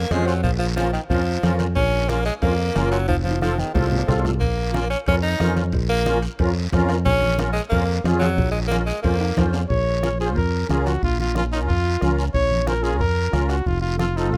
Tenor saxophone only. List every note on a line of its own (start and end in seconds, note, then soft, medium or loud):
0.00 0.13 A#3 medium
0.11 0.28 G#3 medium
0.27 0.43 F#3 medium
0.43 0.51 F3 medium
0.59 0.66 F3 medium
0.76 0.92 F3 medium
0.93 1.00 D#3 medium
1.10 1.56 F3 medium
1.75 2.10 C#4 medium
2.09 2.25 A#3 medium
2.25 2.33 G#3 medium
2.42 2.88 A#3 medium
2.91 3.07 F#3 medium
3.08 3.16 F3 medium
3.24 3.40 F3 medium
3.42 3.60 F3 medium
3.59 3.73 D#3 medium
3.74 4.21 F3 medium
4.40 4.87 A#3 medium
4.90 4.98 C#4 medium
5.08 5.15 C#4 medium
5.22 5.54 D#4 medium
5.89 6.20 A#3 medium
7.05 7.36 C#4 loud
7.53 7.61 G#3 medium
7.69 8.01 A#3 medium
8.19 8.51 F#3 medium
8.51 8.60 G#3 medium
8.68 8.76 A#3 medium
8.86 9.02 G#3 medium
9.02 9.49 A#3 medium